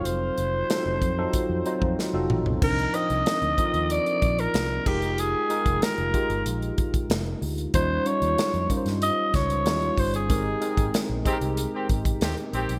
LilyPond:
<<
  \new Staff \with { instrumentName = "Alto saxophone" } { \time 4/4 \key f \dorian \tempo 4 = 94 c''2. r4 | bes'8 ees''4. d''8. bes'8. g'8 | aes'4 bes'4 r2 | c''8 des''4 r8 ees''8 des''4 c''16 aes'16~ |
aes'4~ aes'16 r2 r8. | }
  \new Staff \with { instrumentName = "Tine electric piano" } { \time 4/4 \key f \dorian <ges c' ees' f' a'>8. r16 <ges c' ees' f' a'>8 r16 <ges c' ees' f' a'>8 r16 <ges c' ees' f' c''>8 r16 <ges c' ees' f' a'>8 r16 | <f c' d' ees' bes'>16 r16 <f c' ees' f' bes'>8. r16 <f c' ees' f' a' bes'>4~ <f c' ees' f' a' bes'>16 r8. <aes ees' f' g' bes'>8~ | <aes ees' f' g' bes'>16 r16 <aes ees' f' bes' g''>8. r16 <aes ees' f' g' bes'>4~ <aes ees' f' g' bes'>16 r4 r16 | <g des' ees' f' c''>16 r16 <g des' ees' f' des''>8. r16 <g des' ees' f' bes' c''>4~ <g des' ees' f' bes' c''>16 r16 <g des' ees' f' des''>8. r16 |
<aes c' ees' g' bes'>16 r16 <aes c' ees' bes' g''>8. r16 <aes c' ees' g' aes' bes'>4~ <aes c' ees' g' aes' bes'>16 r4 r16 | }
  \new Staff \with { instrumentName = "Horn section" } { \time 4/4 \key f \dorian r1 | r1 | r1 | r1 |
r4. <ees c' g'>16 r8 <ees c' g'>16 r8 <ees c' g'>16 r16 <ees c' g'>8 | }
  \new Staff \with { instrumentName = "Fingered electric bass" } { \clef bass \time 4/4 \key f \dorian f,,8 f,,8 r16 f,,16 f,8 r16 f,16 r16 f,16 r16 f,,16 a,,16 b,,16 | c,8 r16 c,16 r16 d,16 r16 ees,8 r16 bes,,8 c,8 f,,8~ | f,,8 r16 f,,16 r16 f,,16 r16 g,,16 bes,,8 r8 f,,8 d,8 | ees,8 r16 ees,16 r16 f,16 r16 g,8 r16 des,8 ees,8 g,,8 |
aes,,8 r16 aes,,16 r16 bes,,16 r16 c,8 r16 aes,,8 ees,16 r16 bes,,16 b,,16 | }
  \new DrumStaff \with { instrumentName = "Drums" } \drummode { \time 4/4 hh8 hh8 <hh sn>8 <hh bd>8 <hh bd>8 hh16 bd16 sn8 toml16 tomfh16 | <cymc bd>16 hh16 hh16 hh16 <hh sn>16 hh16 <hh bd>16 hh16 hh16 hh16 <hh bd>16 hh16 <hh sn>8 <cymc bd>16 hh16 | hh8 hh16 <hh bd>16 <hh sn>16 hh16 <hh bd>16 hh16 hh16 hh16 <hh bd>16 <hh bd>16 <hh sn>8 hho16 hh16 | <hh bd>8 hh16 hh16 <hh sn>16 hh16 <hh bd>16 <hh sn>16 hh8 <hh bd sn>16 hh16 <hh sn>16 hh16 <hho bd>16 hh16 |
<hh bd>8 hh16 <hh bd>16 <hh sn>8 <hh bd>16 hh16 hh8 <hh bd>16 <hh bd>16 <hh sn>16 hh16 hh16 hh16 | }
>>